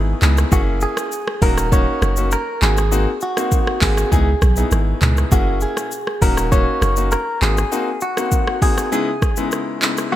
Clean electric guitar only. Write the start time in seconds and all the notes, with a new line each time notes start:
0.53 F#4
0.83 G#4
1.43 A#4
1.73 C#5
2.33 A#4
2.62 G#4
3.23 F#4
3.82 G#4
4.12 G#4
5.32 F#4
5.62 G#4
6.22 A#4
6.52 C#5
7.12 A#4
7.42 G#4
8.02 F#4
8.62 G#4
8.92 G#4
10.12 F#4